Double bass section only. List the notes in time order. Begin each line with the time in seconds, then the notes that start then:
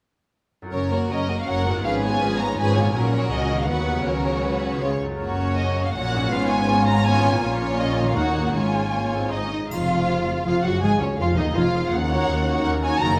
0.73 F#1
1.11 F#1
1.48 F#1
1.85 G#1
2.21 G#1
2.58 G#1
2.94 A#1
3.31 C#2
3.68 D#2
4.06 C#2
4.82 C#2
5.20 F#1
5.95 A#1
6.31 G#1
7.42 A#1
8.17 D#2
8.55 G#1
9.32 G#1
9.71 F1
10.46 F1
10.64 F#1
10.82 G#1
11.01 C#2
11.19 F1
11.37 D#2
11.56 F1
11.92 D#2
12.28 D#2
12.65 D#2
13.00 F#1